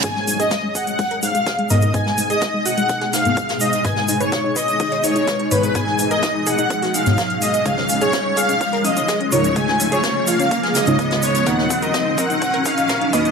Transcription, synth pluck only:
\new Staff \with { instrumentName = "Synth pluck" } { \time 4/4 \key gis \dorian \tempo 4 = 126 gis'16 gis16 gis16 gis'16 gis16 gis16 gis'16 gis16 gis16 ais'16 gis16 gis16 gis'16 gis16 ais'16 gis16 | gis'16 gis16 gis16 gis'16 gis16 gis16 fis'16 gis16 gis16 gis'4. r16 | b'16 dis'16 dis'16 b'16 dis'16 dis'16 b'16 dis'16 dis'16 cis''16 dis'16 dis'16 b'16 dis'16 cis''16 dis'16 | b'16 dis'16 dis'16 ais'16 dis'16 dis'16 gis'16 dis'16 dis'16 fis'4. r16 |
gis'16 cis'16 cis'16 gis'16 cis'16 cis'16 gis'16 cis'16 cis'16 ais'16 cis'16 cis'16 gis'16 cis'16 ais'16 cis'16 | gis'16 cis'16 cis'16 gis'16 cis'16 cis'16 eis'16 cis'16 cis'16 gis'4. r16 | ais'16 dis'16 dis'16 ais'16 dis'16 dis'16 ais'16 dis'16 dis'16 ais'16 dis'16 dis'16 ais'16 dis'16 b'16 dis'16 | }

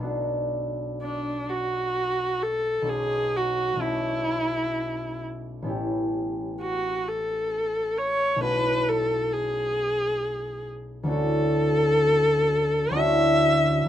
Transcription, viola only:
\new Staff \with { instrumentName = "Viola" } { \time 3/4 \key b \minor \tempo 4 = 65 r4 d'8 fis'4 a'8 | gis'8 fis'8 e'4. r8 | r4 fis'8 a'4 cis''8 | b'8 a'8 gis'4. r8 |
a'2 e''4 | }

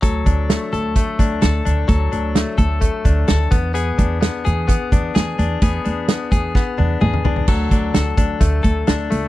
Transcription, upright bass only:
\new Staff \with { instrumentName = "Upright bass" } { \clef bass \time 4/4 \key d \lydian \tempo 4 = 129 d,8 d,8. r16 d,8. r16 d,8 d,8 d,8 | d,8 d,8. r16 d,8. r16 d,8 d,8 e,8~ | e,8 e,8. r16 e,8. r16 e,8 e,8 e,8 | e,8 e,8. r16 e,8. r16 e,8 e,8 e,8 |
d,8 d,8 d,8 d,8 d,8 d,8 d,8 cis,8 | }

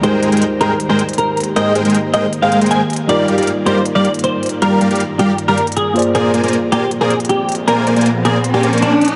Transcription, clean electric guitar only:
\new Staff \with { instrumentName = "Clean electric guitar" } { \time 4/4 \key ees \major \tempo 4 = 157 c''8 r4 bes'8 r16 c''8 r16 bes'8 r8 | ees''8 r4 ees''8 r16 f''8 r16 aes''8 r8 | d''8 r4 c''8 r16 d''8 r16 c''8 r8 | bes'8 r4 g'8 r16 bes'8 r16 aes'8 r8 |
aes'8 r4 g'8 r16 aes'8 r16 g'8 r8 | bes'8 r4 aes'8 r16 g'8 r16 d'8 r8 | }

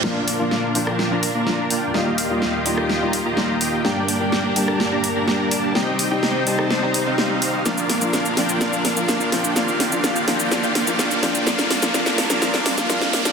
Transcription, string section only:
\new Staff \with { instrumentName = "String section" } { \time 4/4 \key bes \major \tempo 4 = 126 << { <bes, d' bes'>1 | <ees, f' g'>1 | <g, d' bes'>1 | <c ees' c''>1 |
<bes, d' bes'>1 | <ees, f' g'>1 | <g, d' bes'>1 | } \\ { f1 | ees1 | g1~ | g1 |
f1 | ees1 | g1 | } >> }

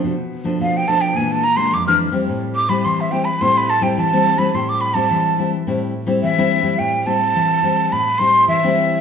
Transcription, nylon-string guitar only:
\new Staff \with { instrumentName = "Nylon-string guitar" } { \time 4/4 \key a \minor \tempo 4 = 107 << { <f a d'>16 r8 <f a d'>8. <f a d'>8 <e aes d'>8 r16 <e aes d'>8 <e aes d'>8 <g c' e'>16~ | <g c' e'>8. <g c' e'>8. <g c' e'>16 r16 <g c' e'>8 r16 <g c' e'>8 <g c' e'>8 <g c' e'>16 | <g c' e'>8. <g c' e'>8. <g c' e'>16 r16 <g c' e'>8 r16 <g c' e'>8 <g c' e'>8 <g c' e'>16~ | <g c' e'>8 <g c' e'>4 <g c' e'>8. r16 <g c' e'>8. <g c' e'>8. | } \\ { b,4 b,4 bes,4 f,4 | a,4 e4 a,4 e4 | a,4 e4 a,4 e4 | a,4 e4 a,4 e4 | } >> }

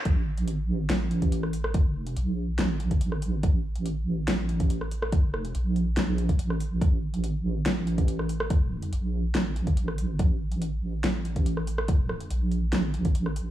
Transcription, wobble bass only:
\new Staff \with { instrumentName = "Wobble bass" } { \clef bass \time 4/4 \key bes \lydian \tempo 4 = 142 a,,2 a,,2~ | a,,4 bes,,4 a,,2 | a,,2 a,,2~ | a,,4 bes,,4 bes,,4 a,,4 |
a,,2 a,,2~ | a,,4 bes,,4 a,,2 | a,,2 a,,2~ | a,,4 bes,,4 a,,2 | }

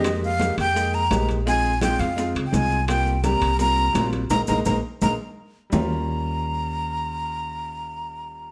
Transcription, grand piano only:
\new Staff \with { instrumentName = "Grand piano" } { \time 4/4 \key ees \mixolydian \tempo 4 = 169 <aes bes ees' g'>8 r8 <aes bes ees' g'>8 r8 <aes bes ees' aes'>8 r8 <aes bes ees' g'>8 r8 | <aes c' ees' f'>8 r8 <aes c' ees' f'>8 r8 <aes c' ees' f'>8 r8 <aes c' ees' f'>8 r8 | <g bes c' f'>8 r8 <g bes c' g'>8 r8 <g bes c' f'>8 r8 <g bes c' f'>8 r8 | <aes bes ees'>8 <aes bes ees'>8 <aes bes ees'>8 r8 <aes bes ees'>8 r4. |
<g bes des' f'>1~ | <g bes des' f'>1 | }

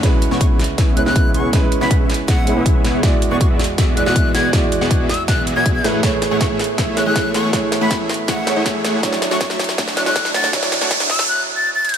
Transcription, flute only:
\new Staff \with { instrumentName = "Flute" } { \time 4/4 \key cis \phrygian \tempo 4 = 160 r8. cis'''16 cis'''16 r4 r16 fis'''16 fis'''8. cis'''8 | r8. b''8 r8. fis''4 r4 | r8. cis'''16 cis'''16 r4 r16 fis'''16 fis'''8. gis'''8 | r4. e'''8 fis'''8 r16 gis'''8 gis'''16 r8 |
r8. cis'''16 cis'''16 r4 r16 fis'''16 fis'''8. cis'''8 | r8. b''8 r8. fis''4 r4 | r8. cis'''16 cis'''16 r4 r16 fis'''16 fis'''8. a'''8 | r4. e'''8 fis'''8 r16 a'''8 a'''8. | }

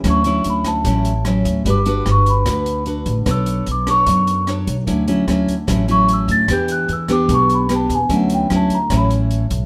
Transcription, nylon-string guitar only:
\new Staff \with { instrumentName = "Nylon-string guitar" } { \time 4/4 \key d \major \tempo 4 = 149 << { <fis cis' e'>8 <fis cis' e'>4. <fis cis' e'>8 r8 <fis cis' e'>4 | <d' fis' b'>8 <d' fis' b'>4. <d' fis' b'>4 <d' fis' b'>8 r8 | <d' a' cis''>4 r8 <d' a' cis''>4. <d' a' cis''>8 r8 | <fis cis' e'>8 <fis cis' e'>8 <fis cis' e'>8 r8 <fis cis' e'>8 <fis cis' e'>4. |
<b d' g'>4 r8 <b d' g'>4. <b d' g'>8 r8 | <fis cis' e'>4 <fis cis' e'>8 r8 <fis cis' e'>4. r8 | } \\ { d2 a,2 | g2 d2 | b2 fis2 | d2 a,2 |
e2 b,2 | d2 a,2 | } >> }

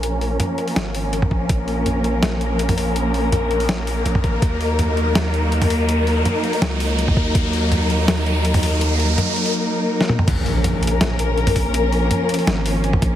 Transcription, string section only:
\new Staff \with { instrumentName = "String section" } { \time 4/4 \key bes \minor \tempo 4 = 164 << { <bes bes'>1~ | <bes bes'>1~ | <bes bes'>1~ | <bes bes'>1~ |
<bes bes'>1~ | <bes bes'>1~ | <bes bes'>1 | <bes bes'>1~ |
<bes bes'>1 | } \\ { <f des'>1~ | <f des'>1~ | <f des'>1 | <ges ees'>1~ |
<ges ees'>1~ | <ges ees'>1~ | <ges ees'>1 | <f des'>1~ |
<f des'>1 | } >> }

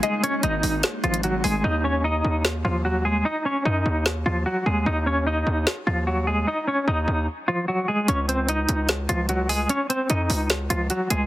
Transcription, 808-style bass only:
\new Staff \with { instrumentName = "808-style bass" } { \clef bass \time 4/4 \key ees \dorian \tempo 4 = 149 r4 aes,,8 aes,,8 r8 aes,,4 aes,,8 | ees,4. ees,4 ees,4. | r4 ges,8 ees,4 ees,8 r8 ees,8 | ees,4. ees,8 r8 ees,4. |
r4 ees,8 ees,8 r2 | des,4. des,4 des,4. | r4 f,8 des,4 des,8 r8 des,8 | }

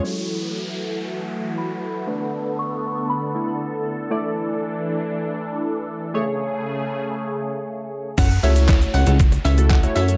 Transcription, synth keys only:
\new Staff \with { instrumentName = "Synth keys" } { \time 4/4 \key fis \minor \tempo 4 = 118 <fis e' a'>1 | <a d' b'>2~ <a d' b'>8 <a d' e'>4. | <a e' d''>1 | <a gis' cis''>1 |
r8 <a e' fis' cis''>4. r8. <a e' fis' a'>8 <a e' fis' cis''>8 r16 | }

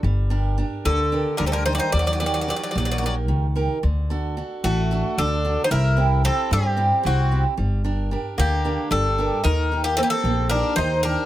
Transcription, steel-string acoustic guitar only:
\new Staff \with { instrumentName = "Steel-string acoustic guitar" } { \time 7/8 \tempo 4 = 112 g8 <d' g' bes'>8 <d' g' bes'>8 d8 <d' g' bes'>8 g8 <d' g' bes'>8 | ees8 <ees' g' bes'>8 <ees' g' bes'>8 bes8 <ees' g' bes'>8 ees8 <ees' g' bes'>8 | d8 <d' fis' a'>8 <d' fis' a'>8 a8 <d' fis' a'>8 d8 <d' fis' a'>8 | c8 <c' e' g'>8 <c' e' g'>8 g8 <c' e' g'>8 c8 <c' e' g'>8 |
g8 <d' g' bes'>8 <d' g' bes'>8 d8 <d' g' bes'>8 g8 <d' g' bes'>8 | ees8 <ees' g' bes'>8 <bes ees' g'>8 bes8 <ees' g' bes'>8 ees8 <ees' g' bes'>8 | }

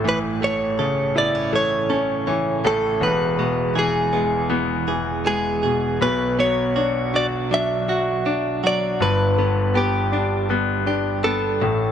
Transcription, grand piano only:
\new Staff \with { instrumentName = "Grand piano" } { \clef bass \time 4/4 \key g \lydian \tempo 4 = 80 <a,, a, e>8 a8 cis8 e'8 a8 cis'8 e8 <a,, a,>8 | <e,, e,>8 b,8 e8 gis8 b8 e8 gis8 b,8 | <b,, b,>8 fis8 d'8 fis'8 d'8 fis'8 d'8 fis8 | <g,, g,>8 d8 b8 d'8 b8 d'8 b8 <a,, a,>8 | }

